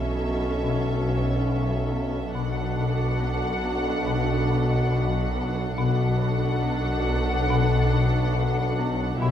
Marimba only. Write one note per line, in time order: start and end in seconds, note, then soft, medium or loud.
0.21 0.46 B3 soft
0.64 0.89 B2 soft
1.06 1.32 B2 soft
1.49 1.75 B2 soft
1.92 2.18 B3 soft
2.35 2.61 B2 soft
2.77 3.03 B2 soft
3.21 3.46 B3 soft
3.64 3.90 B3 soft
4.06 4.32 B2 soft
4.49 4.75 B2 soft
4.92 5.18 B2 soft
5.35 5.61 B3 soft
5.78 6.04 B2 medium
6.21 6.47 B2 soft
6.64 6.90 B3 soft
7.07 7.33 B3 soft
7.50 7.75 B2 medium
7.93 8.18 B2 soft
8.36 8.61 B2 soft
8.79 9.04 B3 soft
9.22 9.31 B2 medium